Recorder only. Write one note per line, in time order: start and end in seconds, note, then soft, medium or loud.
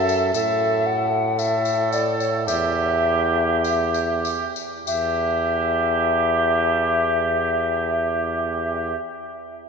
0.00 0.33 E5 medium
0.34 0.88 E5 medium
0.86 1.40 F#5 medium
1.39 1.92 E5 medium
1.92 2.17 D5 medium
2.18 2.46 C#5 medium
2.47 4.20 E5 medium
4.87 8.95 E5 medium